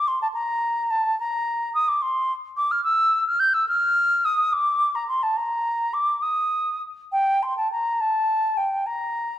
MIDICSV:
0, 0, Header, 1, 2, 480
1, 0, Start_track
1, 0, Key_signature, -2, "major"
1, 0, Tempo, 552486
1, 298, Time_signature, 12, 3, 24, 8
1, 2700, Tempo, 566038
1, 5100, Tempo, 584795
1, 7931, End_track
2, 0, Start_track
2, 0, Title_t, "Flute"
2, 0, Program_c, 0, 73
2, 67, Note_on_c, 0, 84, 81
2, 183, Note_off_c, 0, 84, 0
2, 189, Note_on_c, 0, 81, 76
2, 241, Note_off_c, 0, 81, 0
2, 294, Note_on_c, 0, 82, 91
2, 787, Note_on_c, 0, 81, 82
2, 800, Note_off_c, 0, 82, 0
2, 1026, Note_off_c, 0, 81, 0
2, 1043, Note_on_c, 0, 82, 93
2, 1505, Note_off_c, 0, 82, 0
2, 1517, Note_on_c, 0, 87, 84
2, 1635, Note_on_c, 0, 86, 77
2, 1648, Note_off_c, 0, 87, 0
2, 1756, Note_on_c, 0, 84, 89
2, 1769, Note_off_c, 0, 86, 0
2, 2019, Note_off_c, 0, 84, 0
2, 2234, Note_on_c, 0, 86, 90
2, 2357, Note_on_c, 0, 89, 81
2, 2370, Note_off_c, 0, 86, 0
2, 2465, Note_off_c, 0, 89, 0
2, 2470, Note_on_c, 0, 88, 92
2, 2817, Note_off_c, 0, 88, 0
2, 2838, Note_on_c, 0, 89, 85
2, 2945, Note_on_c, 0, 91, 87
2, 2957, Note_off_c, 0, 89, 0
2, 3066, Note_on_c, 0, 88, 81
2, 3078, Note_off_c, 0, 91, 0
2, 3182, Note_off_c, 0, 88, 0
2, 3186, Note_on_c, 0, 89, 101
2, 3670, Note_on_c, 0, 87, 84
2, 3682, Note_off_c, 0, 89, 0
2, 3904, Note_on_c, 0, 86, 92
2, 3916, Note_off_c, 0, 87, 0
2, 4264, Note_on_c, 0, 82, 78
2, 4277, Note_off_c, 0, 86, 0
2, 4373, Note_off_c, 0, 82, 0
2, 4378, Note_on_c, 0, 84, 86
2, 4499, Note_on_c, 0, 81, 74
2, 4512, Note_off_c, 0, 84, 0
2, 4618, Note_on_c, 0, 82, 84
2, 4631, Note_off_c, 0, 81, 0
2, 5099, Note_on_c, 0, 86, 82
2, 5112, Note_off_c, 0, 82, 0
2, 5334, Note_on_c, 0, 87, 74
2, 5346, Note_off_c, 0, 86, 0
2, 5825, Note_off_c, 0, 87, 0
2, 6072, Note_on_c, 0, 79, 93
2, 6322, Note_on_c, 0, 84, 70
2, 6334, Note_off_c, 0, 79, 0
2, 6437, Note_off_c, 0, 84, 0
2, 6442, Note_on_c, 0, 81, 71
2, 6555, Note_off_c, 0, 81, 0
2, 6561, Note_on_c, 0, 82, 73
2, 6797, Note_on_c, 0, 81, 79
2, 6810, Note_off_c, 0, 82, 0
2, 7262, Note_on_c, 0, 79, 70
2, 7274, Note_off_c, 0, 81, 0
2, 7502, Note_on_c, 0, 82, 71
2, 7514, Note_off_c, 0, 79, 0
2, 7931, Note_off_c, 0, 82, 0
2, 7931, End_track
0, 0, End_of_file